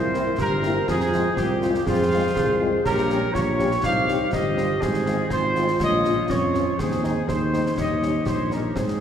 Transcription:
0.00 0.31 C2 medium
0.00 0.41 E4 medium
0.00 0.38 A#4 medium
0.00 0.35 C5 medium
0.00 0.39 C5 medium
0.14 0.23 A#3 medium
0.14 0.23 C4 medium
0.14 0.23 E4 medium
0.14 snare medium
0.38 0.79 G1 medium
0.38 0.90 G4 medium
0.38 0.85 A#4 medium
0.38 0.85 C5 medium
0.38 concert bass drum medium
0.38 snare medium
0.62 0.72 A#3 medium
0.62 0.72 C4 medium
0.62 0.72 E4 medium
0.62 snare medium
0.87 1.26 F2 medium
0.87 1.86 F4 medium
0.87 1.70 G#4 medium
0.87 1.34 G#4 medium
0.87 1.70 C5 medium
0.87 concert bass drum medium
0.87 snare medium
1.00 snare medium
1.13 1.21 G#3 medium
1.13 1.22 C4 medium
1.13 1.22 F4 medium
1.13 snare medium
1.37 1.78 C2 medium
1.37 1.83 G4 medium
1.37 concert bass drum medium
1.37 snare medium
1.62 1.72 G#3 medium
1.62 1.71 C4 medium
1.62 1.72 F4 medium
1.62 snare medium
1.75 snare medium
1.86 2.27 F2 medium
1.86 2.68 F4 medium
1.86 2.32 G#4 medium
1.86 2.81 G#4 medium
1.86 2.81 C5 medium
1.86 concert bass drum medium
1.86 snare medium
2.12 2.20 G#3 medium
2.12 2.21 C4 medium
2.12 2.20 F4 medium
2.36 2.77 C2 medium
2.36 2.81 G#4 medium
2.36 concert bass drum medium
2.36 snare medium
2.60 2.69 G#3 medium
2.60 2.69 C4 medium
2.60 2.69 F4 medium
2.85 3.26 A#1 medium
2.85 3.31 G4 medium
2.85 3.31 A#4 medium
2.85 3.33 C#5 medium
2.85 concert bass drum medium
2.85 snare medium
2.85 crash soft
2.98 snare soft
3.10 3.19 G3 medium
3.10 3.19 C#4 medium
3.10 3.18 G4 medium
3.10 snare medium
3.33 3.75 A#1 medium
3.33 3.86 F4 medium
3.33 3.80 G4 medium
3.33 3.83 C#5 loud
3.33 3.80 C#5 medium
3.33 concert bass drum medium
3.33 snare medium
3.59 3.67 G3 medium
3.59 3.67 C#4 medium
3.59 3.67 G4 medium
3.59 snare medium
3.72 snare medium
3.83 4.25 C2 medium
3.83 4.33 D#4 medium
3.83 4.29 G4 medium
3.83 4.31 C5 medium
3.83 4.29 F5 loud
3.83 concert bass drum medium
3.83 snare medium
4.07 4.16 G3 medium
4.07 4.16 C4 medium
4.07 4.16 G4 medium
4.07 snare medium
4.32 4.73 G1 medium
4.32 5.02 G4 medium
4.32 4.78 G4 medium
4.32 4.78 C5 medium
4.32 4.82 D#5 medium
4.32 concert bass drum medium
4.32 snare medium
4.57 4.66 G3 medium
4.57 4.66 C4 medium
4.57 4.66 G4 medium
4.57 snare medium
4.81 5.23 G#1 medium
4.81 5.29 F4 medium
4.81 5.30 G#4 medium
4.81 5.27 C5 medium
4.81 concert bass drum medium
4.81 snare medium
4.94 snare medium
5.06 5.15 G#3 medium
5.06 5.15 C4 medium
5.06 5.15 F4 medium
5.06 snare medium
5.30 5.72 G#1 medium
5.30 5.76 F4 medium
5.30 6.26 F4 medium
5.30 5.76 C5 medium
5.30 5.77 C5 medium
5.30 concert bass drum medium
5.30 snare medium
5.56 5.65 G#3 medium
5.56 5.65 C4 medium
5.56 5.65 F4 medium
5.56 snare soft
5.68 snare medium
5.80 6.21 A#1 medium
5.80 6.26 F4 medium
5.80 6.27 C#5 medium
5.80 6.27 D#5 loud
5.80 concert bass drum medium
5.80 snare medium
6.04 6.14 F3 medium
6.04 6.14 C#4 medium
6.04 6.13 F4 medium
6.04 snare medium
6.28 6.70 F2 medium
6.28 6.80 C#4 medium
6.28 6.74 F4 medium
6.28 6.74 C#5 medium
6.28 6.79 C#5 medium
6.28 concert bass drum medium
6.28 snare medium
6.54 6.63 F3 medium
6.54 6.63 C#4 medium
6.54 6.63 F4 medium
6.54 snare soft
6.77 7.19 D#2 medium
6.77 7.27 C4 medium
6.77 7.26 G#4 medium
6.77 7.28 G#4 medium
6.77 7.26 C5 medium
6.77 concert bass drum medium
6.77 snare medium
6.77 crash soft
6.92 snare soft
7.02 7.11 G#3 medium
7.02 7.11 C4 medium
7.02 7.12 D#4 medium
7.02 snare medium
7.27 7.66 D#2 medium
7.27 8.71 D#4 medium
7.27 7.73 G#4 medium
7.27 7.73 C5 medium
7.27 7.77 C5 medium
7.27 concert bass drum medium
7.27 snare medium
7.52 7.61 G#3 soft
7.52 7.61 C4 soft
7.52 7.61 D#4 medium
7.52 snare soft
7.66 snare soft
7.76 8.18 D#2 medium
7.76 8.71 G4 medium
7.76 8.71 C#5 medium
7.76 8.24 D#5 medium
7.76 concert bass drum medium
7.76 snare medium
8.02 8.10 G3 soft
8.02 8.11 C#4 soft
8.02 8.10 D#4 soft
8.02 snare soft
8.26 8.67 A#1 medium
8.26 8.51 C5 medium
8.26 concert bass drum medium
8.26 snare medium
8.50 8.59 G3 soft
8.50 8.59 C#4 soft
8.50 8.59 D#4 soft
8.50 8.76 A#4 medium
8.50 snare medium
8.74 9.00 G#2 medium
8.74 9.00 C4 medium
8.74 9.00 G#4 medium
8.74 9.00 C5 medium
8.74 concert bass drum medium
8.74 snare medium
8.88 snare soft

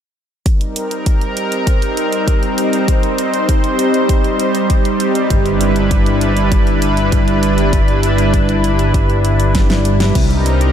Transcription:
0.46 10.12 G3 medium
0.46 5.27 C4 medium
0.46 5.27 D#4 medium
0.46 2.86 A#4 loud
0.46 kick loud
0.46 closed hi-hat medium
0.61 closed hi-hat soft
0.76 closed hi-hat medium
0.91 closed hi-hat medium
1.06 kick loud
1.06 closed hi-hat medium
1.21 closed hi-hat soft
1.37 closed hi-hat medium
1.52 closed hi-hat medium
1.67 kick loud
1.67 closed hi-hat medium
1.82 closed hi-hat soft
1.97 closed hi-hat medium
2.13 closed hi-hat medium
2.28 kick loud
2.28 closed hi-hat medium
2.43 closed hi-hat soft
2.58 closed hi-hat medium
2.73 closed hi-hat medium
2.88 5.28 C5 loud
2.88 kick loud
2.88 closed hi-hat medium
3.03 closed hi-hat soft
3.18 closed hi-hat medium
3.34 closed hi-hat medium
3.49 kick loud
3.49 closed hi-hat medium
3.64 closed hi-hat soft
3.79 closed hi-hat medium
3.94 closed hi-hat medium
4.09 kick loud
4.09 closed hi-hat medium
4.24 closed hi-hat soft
4.40 closed hi-hat medium
4.55 closed hi-hat medium
4.70 kick loud
4.70 closed hi-hat medium
4.85 closed hi-hat soft
5.00 closed hi-hat medium
5.15 closed hi-hat medium
5.30 10.12 G1 medium
5.30 10.12 D4 medium
5.30 10.12 E4 medium
5.30 10.12 B4 loud
5.30 kick loud
5.30 closed hi-hat medium
5.46 closed hi-hat soft
5.61 closed hi-hat medium
5.76 closed hi-hat medium
5.91 kick loud
5.91 closed hi-hat medium
6.06 closed hi-hat soft
6.21 closed hi-hat medium
6.37 closed hi-hat medium
6.52 kick loud
6.52 closed hi-hat medium
6.67 closed hi-hat soft
6.82 closed hi-hat medium
6.97 closed hi-hat medium
7.12 kick loud
7.12 closed hi-hat medium
7.28 closed hi-hat soft
7.43 closed hi-hat medium
7.58 closed hi-hat medium
7.73 kick loud
7.73 closed hi-hat medium
7.88 closed hi-hat soft
8.03 closed hi-hat medium
8.18 closed hi-hat medium
8.34 kick loud
8.34 closed hi-hat medium
8.49 closed hi-hat soft
8.64 closed hi-hat medium
8.79 closed hi-hat medium
8.94 kick loud
8.94 closed hi-hat medium
9.10 closed hi-hat soft
9.25 closed hi-hat medium
9.40 closed hi-hat medium
9.55 kick loud
9.55 snare medium
9.55 closed hi-hat medium
9.70 snare medium
9.70 closed hi-hat soft
9.85 closed hi-hat medium
10.00 snare medium
10.00 closed hi-hat medium
10.15 10.72 C2 medium
10.15 10.72 G3 medium
10.15 10.72 C4 medium
10.15 10.72 D#4 medium
10.15 10.72 A#4 loud
10.15 kick loud
10.15 closed hi-hat medium
10.15 crash loud
10.31 closed hi-hat soft
10.46 closed hi-hat medium
10.61 closed hi-hat medium

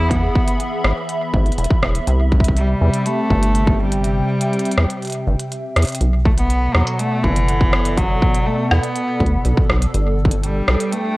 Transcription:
0.00 0.30 E2 loud
0.00 2.08 E3 medium
0.00 2.08 B3 medium
0.00 0.12 E4 loud
0.00 2.08 G#4 medium
0.00 7.58 E5 medium
0.00 3.28 B5 medium
0.11 0.84 B3 medium
0.11 kick medium
0.11 closed hi-hat soft
0.35 kick loud
0.48 closed hi-hat medium
0.60 closed hi-hat soft
0.84 0.93 G#1 loud
0.84 cross-stick loud
1.09 closed hi-hat soft
1.34 1.51 G#1 medium
1.34 kick medium
1.46 closed hi-hat soft
1.52 closed hi-hat soft
1.58 1.67 E1 loud
1.58 closed hi-hat soft
1.64 closed hi-hat medium
1.71 kick loud
1.83 2.00 E1 medium
1.83 cross-stick loud
1.95 closed hi-hat medium
2.07 2.75 C2 loud
2.07 6.01 C3 medium
2.07 closed hi-hat soft
2.32 kick loud
2.40 6.01 C4 medium
2.40 6.01 G4 medium
2.40 kick medium
2.44 closed hi-hat medium
2.48 kick medium
2.57 3.07 G3 loud
2.57 closed hi-hat soft
2.81 2.90 E2 loud
2.93 closed hi-hat medium
3.06 3.81 A3 loud
3.06 closed hi-hat soft
3.26 6.01 G5 medium
3.30 4.23 G1 loud
3.30 kick medium
3.43 closed hi-hat medium
3.55 closed hi-hat soft
3.67 kick loud
3.80 5.52 G3 loud
3.92 closed hi-hat medium
4.04 closed hi-hat medium
4.41 closed hi-hat medium
4.53 closed hi-hat soft
4.60 closed hi-hat soft
4.66 closed hi-hat soft
4.72 closed hi-hat soft
4.78 4.87 E2 loud
4.78 cross-stick loud
4.90 closed hi-hat medium
5.03 closed hi-hat soft
5.05 closed hi-hat soft
5.07 closed hi-hat soft
5.10 closed hi-hat soft
5.12 closed hi-hat soft
5.27 5.36 G1 medium
5.39 closed hi-hat medium
5.52 closed hi-hat medium
5.76 5.85 E2 loud
5.76 cross-stick loud
5.76 closed hi-hat medium
5.82 closed hi-hat medium
5.85 closed hi-hat soft
5.87 closed hi-hat soft
5.87 closed hi-hat medium
5.90 closed hi-hat soft
5.92 closed hi-hat soft
5.95 closed hi-hat medium
6.01 6.69 B1 loud
6.01 9.94 B2 medium
6.01 closed hi-hat medium
6.25 6.31 A3 loud
6.25 9.94 F#5 medium
6.25 kick loud
6.30 11.17 B3 medium
6.30 11.17 A4 medium
6.30 11.17 D5 medium
6.38 6.76 B3 loud
6.38 closed hi-hat medium
6.50 closed hi-hat medium
6.75 6.83 E2 loud
6.75 7.01 F#3 medium
6.75 cross-stick loud
6.87 closed hi-hat medium
6.99 7.25 A3 loud
6.99 closed hi-hat medium
7.24 8.16 F#1 loud
7.24 7.99 E3 loud
7.24 kick medium
7.36 closed hi-hat medium
7.48 closed hi-hat medium
7.61 kick loud
7.73 cross-stick loud
7.85 closed hi-hat medium
7.97 8.48 F#3 loud
7.97 kick medium
7.97 closed hi-hat medium
8.22 kick loud
8.34 closed hi-hat medium
8.47 8.73 A3 loud
8.71 8.80 E2 medium
8.71 9.70 B3 loud
8.71 cross-stick loud
8.84 closed hi-hat medium
8.96 closed hi-hat medium
9.21 9.38 D2 loud
9.21 kick medium
9.27 closed hi-hat medium
9.45 9.54 B1 medium
9.45 closed hi-hat medium
9.57 kick loud
9.70 9.87 B1 medium
9.70 cross-stick loud
9.82 closed hi-hat medium
9.94 10.62 G1 loud
9.94 11.17 G3 medium
9.94 closed hi-hat medium
10.25 11.17 D4 medium
10.25 11.17 G5 medium
10.25 kick loud
10.31 closed hi-hat medium
10.44 10.94 G3 medium
10.44 closed hi-hat medium
10.50 11.17 B4 medium
10.68 10.77 B1 medium
10.68 cross-stick loud
10.80 closed hi-hat medium
10.93 11.17 A3 loud
10.93 closed hi-hat soft

